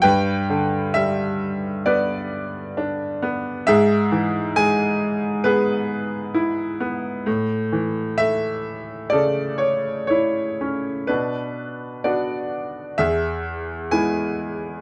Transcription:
<<
  \new Staff \with { instrumentName = "Grand piano" } { \time 4/4 \key a \mixolydian \tempo 4 = 65 << { g''4 e''4 d''4. r8 | e''4 gis''4 b'4. r8 | r4 e''4 d''8 cis''8 cis''8. r16 | \key e \dorian b'4 d''4 e''4 gis''4 | } \\ { b'2 b'2 | gis'2 gis'2 | r2 a'2 | d'2 gis'2 | } >> }
  \new Staff \with { instrumentName = "Grand piano" } { \time 4/4 \key a \mixolydian g,8 d8 g4 b4 d'8 b8 | gis,8 e8 gis4 b4 e'8 b8 | a,8 e8 a4 cis4 e'8 cis'8 | \key e \dorian b,4 <b d' fis'>4 e,4 <gis b e'>4 | }
>>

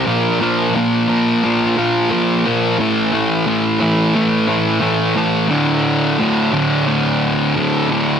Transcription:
\new Staff \with { instrumentName = "Distorted electric guitar" } { \clef bass \time 4/4 \key a \mixolydian \tempo 4 = 88 <bes, f bes>8 <bes, f bes>8 <bes, f bes>8 <bes, f bes>8 <bes, f bes>8 <bes, f bes>8 <bes, f bes>8 <bes, f bes>8 | <a, e a>8 <a, e a>8 <a, e a>8 <a, e a>8 <a, e a>8 <a, e a>8 <a, e a>8 <a, e a>8 | <d, a, d>4 <d, a, d>8 <d, a, d>8 <d, a, d>4 <d, a, d>8 <d, a, d>8 | }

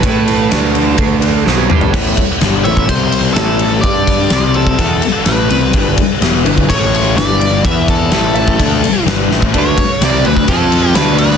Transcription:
<<
  \new Staff \with { instrumentName = "Lead electric guitar" } { \time 4/4 \key g \lydian \tempo 4 = 126 b'2. r4 | r4. e''8 c''4 a'4 | d''4. a'4. b'4~ | b'8 r4. cis''4 d''4 |
e''8 a'2~ a'8 r4 | cis''4 d''8 b'8 a'4 b'8 b'8 | }
  \new Staff \with { instrumentName = "Clean electric guitar" } { \time 4/4 \key g \lydian <a, e a>8 <a, e>8 <d a d'>8 <d a d'>8 <d a>8 <d a d'>8 <c g c'>8 <c g>8 | <b e' a' cis''>8 r4 <b e' a' cis''>8 r4 <b e' a' cis''>8 r8 | <g d' g' d''>8 r4 <c g c' g'>8 r4 <a cis' e' b'>8 r8 | <g d' e' b'>8 r4 <g d' e' b'>8 r4 <g d' e' b'>8 r8 |
<e b e' b'>8 r4 <a e' a' e''>8 r4 <g d' e' b'>8 r8 | <a d' fis' b'>8 r4 <a d' fis' b'>8 r4 <d a b fis'>8 r8 | }
  \new Staff \with { instrumentName = "Distorted electric guitar" } { \time 4/4 \key g \lydian <a e' a'>4 <d a d'>4 <d a d'>4 <b, fis b>8 <g d' g'>8 | r1 | r1 | r1 |
r1 | <d a d'>8 r8 <c g c'>8 <d a>8 <f c' f'>4 <d a d'>4 | }
  \new Staff \with { instrumentName = "Distorted electric guitar" } { \clef bass \time 4/4 \key g \lydian r1 | <a, e a>8 r8 <g, d g>8 <a, e>8 <c g c'>4 <a, e a>4 | <g d' g'>4 <c g c'>4 <e b e'>8 r8 <a, e a>8 <c g c'>8 | <g, d g>8 r8 <e, b, e>8 <g, d>8 <a, e a>4 <g, d g>4 |
<e b e'>4 <a, e a>4 <d a d'>8 r8 <g, d g>8 <a, e a>8 | <d a d'>8 r8 <c g c'>8 <d a>8 <f c' f'>4 <d a d'>4 | }
  \new Staff \with { instrumentName = "Picked electric bass" } { \clef bass \time 4/4 \key g \lydian a,4 d,4 d,4 b,,8 g,8 | a,,8 r8 g,,8 a,,8 c,4 a,,4 | g,4 c,4 e,8 r8 a,,8 c,8 | g,,8 r8 e,,8 g,,8 a,,4 g,,4 |
e,4 a,,4 d,8 r8 g,,8 a,,8 | d,8 r8 c,8 d,8 f,4 d,4 | }
  \new DrumStaff \with { instrumentName = "Drums" } \drummode { \time 4/4 <bd cymr>8 cymr8 <cymr sn>8 cymr8 <bd cymr>8 cymr8 sn8 toml16 tomfh16 | <cymc bd>8 <bd cymr>8 <cymr sn>8 cymr16 bd16 <bd cymr>8 cymr8 <cymr sn>8 cymr8 | <bd cymr>8 <bd cymr>8 <cymr sn>8 cymr16 bd16 <bd cymr>8 cymr8 <cymr sn>8 cymr8 | <bd cymr>8 <bd cymr>8 <cymr sn>8 cymr16 bd16 <bd cymr>8 cymr8 <cymr sn>8 cymr8 |
<bd cymr>8 <bd cymr>8 <cymr sn>8 cymr16 bd16 <bd cymr>8 cymr8 <cymr sn>8 sn16 bd16 | <bd cymr>8 <bd cymr>8 <cymr sn>8 cymr16 bd16 <bd cymr>8 cymr8 <cymr sn>8 cymr16 sn16 | }
>>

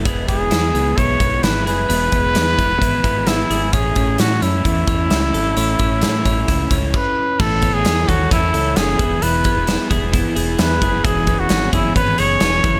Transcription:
<<
  \new Staff \with { instrumentName = "Trumpet" } { \time 4/4 \key a \lydian \tempo 4 = 131 r8 gis'4. cis''4 b'8 b'8~ | b'2. e'4 | gis'4 fis'8 e'2~ e'8~ | e'2. b'4 |
a'8. gis'8. fis'8 e'4 gis'4 | b'4. r4. b'4 | gis'8. fis'8. e'8 b'8 cis''4. | }
  \new Staff \with { instrumentName = "Clean electric guitar" } { \time 4/4 \key a \lydian <b gis'>8 b8 e'8 b8 e'8 b8 e'8 gis'8 | <b gis'>8 b8 e'8 b8 e'8 b8 e'8 gis'8 | cis'8 cis'8 e'8 cis'8 e'8 cis'8 e'8 a'8 | <cis' a'>8 cis'8 e'8 cis'8 e'8 cis'8 r4 |
e8 b8 b16 cis'16 a'8 cis'8 a'8 cis'8 e8 | e8 b8 e'8 gis'8 e'8 gis'8 e'8 gis'8 | e8 b8 cis'8 gis'8 cis'8 gis'8 b16 cis'16 e8 | }
  \new Staff \with { instrumentName = "Overdriven electric guitar" } { \time 4/4 \key a \lydian <e gis b e'>8 <gis b e'>8 <e gis b e'>8 <gis b e'>8 <e gis b e'>8 <gis b e'>8 <e gis b e'>8 <gis b e'>8 | <e gis b e'>8 <gis b e'>8 <e gis b e'>8 <gis b e'>8 <e gis b e'>8 <gis b e'>8 <e gis b e'>8 <gis b e'>8 | <a, e a cis' e'>8 <a cis' e'>8 <a, e a cis' e'>8 <a cis' e'>8 <e a cis' e'>8 <a cis' e'>8 <a, e a cis' e'>8 <a cis' e'>8 | <a, e a cis' e'>8 <a cis' e'>8 <a, e a cis' e'>8 <a cis' e'>8 <e a cis' e'>8 <a cis' e'>8 r4 |
<a b e' a' cis''>8 <e' a' cis''>8 <b e' a' cis''>8 <e' a' cis''>8 <a b e' a' cis''>8 <e' a' cis''>8 <b e' a' cis''>8 <b e' gis'>8 | <e b e' gis'>8 <b e' gis'>8 <e b e' gis'>8 <b e' gis'>8 <e b e' gis'>8 <b e' gis'>8 <e b e' gis'>8 <b e' gis'>8 | <e b cis' gis'>8 <b cis' gis'>8 <e b cis' gis'>8 <b cis' gis'>8 <e b cis' gis'>8 <b cis' gis'>8 <e b cis' gis'>8 <cis' e' a'>8 | }
  \new Staff \with { instrumentName = "Fingered electric bass" } { \clef bass \time 4/4 \key a \lydian e,,8 e,,8 e,8 cis,8 b,,8 b,,8 gis,,8 fis,,8 | e,,8 e,,8 e,8 e,,8 gis,,8 gis,,4 gis,,8 | a,,8 a,,8 a,8 fis,8 e,8 e,8 cis,8 gis,,8 | a,,8 a,,8 a,8 a,,8 cis,8 cis,8 r4 |
a,,8. a,,16 e,8 dis,8 e,8 cis,8 fis,,8 e,,8 | e,,8 r16 e,,8 r16 e,,8. r16 e,,8 e,8 fis,,8 | e,,8. e,,16 gis,,8 fis,,8 gis,,8 fis,,8 e,,8 fis,,8 | }
  \new DrumStaff \with { instrumentName = "Drums" } \drummode { \time 4/4 <hh bd>8 <hh bd>8 <hh sn>8 hh8 <hh bd>8 <hh bd>8 <hh sn>8 hh8 | hh8 <hh bd>8 <hh sn>8 <hh bd>8 <hh bd>8 <hh bd>8 <hh sn>8 hh8 | <hh bd>8 <hh bd>8 <hh sn>8 hh8 <hh bd>8 <hh bd>8 <hh sn>8 hh8 | hh8 <hh bd>8 <hh sn>8 <hh bd>8 <hh bd sn>8 <hh bd>8 <cymc bd>4 |
<cymc bd>8 <hh bd>8 <hh sn>8 <hh bd>8 <hh bd sn>8 hh8 <hh sn>8 <hh bd>8 | hh8 <hh bd>8 <hh sn>8 <hh bd>8 <hh bd>8 hh8 <hh sn>8 <hh bd>8 | <hh bd>8 <hh bd>8 <hh sn>8 <hh bd>8 <hh bd>8 hh8 <hh sn>8 <hh bd>8 | }
>>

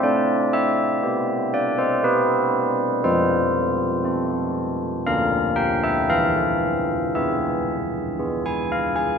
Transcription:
<<
  \new Staff \with { instrumentName = "Church bells" } { \time 3/4 \key e \phrygian \tempo 4 = 59 d''8 e''4 d''16 c''16 b'4 | c''2 f''8 g''16 e''16 | f''4 e''4 r16 gis''16 f''16 gis''16 | }
  \new Staff \with { instrumentName = "Church bells" } { \time 3/4 \key e \phrygian a4 <b g'>4 <b g'>4 | f4 <c' a'>4 <d bes bes'>4 | e4 <b gis'>4 <b gis'>4 | }
>>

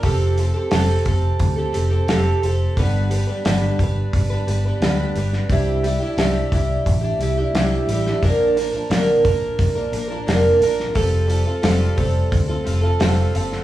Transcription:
<<
  \new Staff \with { instrumentName = "Twelve-string acoustic guitar" } { \time 4/4 \key f \lydian \tempo 4 = 88 <f c' g' a'>8 <f c' g' a'>16 <c' g' a'>16 <f c' g' a'>8 <f c' g' a'>8. <c' g' a'>16 <f c' g' a'>16 <c' g' a'>16 <f c' g' a'>8 <f c' g' a'>8 | <g, d g b d' b'>8 <g b d' b'>16 <g b d' b'>16 <g, d g b d' b'>8 <g b d' b'>8. <g b d' b'>16 <g b d' b'>16 <g b d' b'>16 <g, d g b d' b'>8 <g b d' b'>8 | <c g d' e' g'>8 <g d' e' g'>16 <d' e' g'>16 <c g d' e' g'>8 <g d' e' g'>8. <d' e' g'>16 <g d' e' g'>16 <d' e' g'>16 <c g d' e' g'>8 <g d' e' g'>16 <d' e' g'>16 | <bes, d f bes d' bes'>8 <f bes d' bes'>16 <f bes d' bes'>16 <bes, d f bes d' bes'>8 <f bes d' bes'>8. <f bes d' bes'>16 <f bes d' bes'>16 <f bes d' bes'>16 <bes, d f bes d' bes'>8 <f bes d' bes'>8 |
<f g c' f' a'>8 <g c' f' a'>16 <c' f' a'>16 <f g c' f' a'>8 <g c' f' a'>8. <c' f' a'>16 <g c' f' a'>16 <c' f' a'>16 <f g c' f' a'>8 <g c' f' a'>8 | }
  \new Staff \with { instrumentName = "Fingered electric bass" } { \clef bass \time 4/4 \key f \lydian f,,4 f,,8 f,,8 d,8 f,,8 f,,8 f,,8 | g,,4 g,,8 g,,8 g,,8 g,,8 d,8 g,,8 | c,4 c,8 c,8 a,,8 c,8 c,8 a,,8 | bes,,4 bes,,8 bes,,8 bes,,8 bes,,8 f,,8 bes,,8 |
f,,4 f,,8 f,,8 d,8 f,,8 f,,8 fis,,8 | }
  \new DrumStaff \with { instrumentName = "Drums" } \drummode { \time 4/4 <hho bd>8 hho8 <hho sn>8 <hho bd>8 <hho bd>8 hho8 <hho sn>8 hho8 | <hho bd>8 hho8 <hho sn>8 <hho bd>8 <hho bd>8 hho8 <hho sn>8 hho16 sn16 | <hho bd>8 hho8 <hho sn>8 <hho bd>8 <hho bd>8 hho8 <hho sn>8 hho16 sn16 | <hho bd>8 hho8 <hho sn>8 <hho bd>8 <hho bd>8 hho8 <hho sn>8 hho16 sn16 |
<hho bd>8 hho8 <hho sn>8 <hho bd>8 <hho bd>8 hho8 <hho sn>8 hho16 sn16 | }
>>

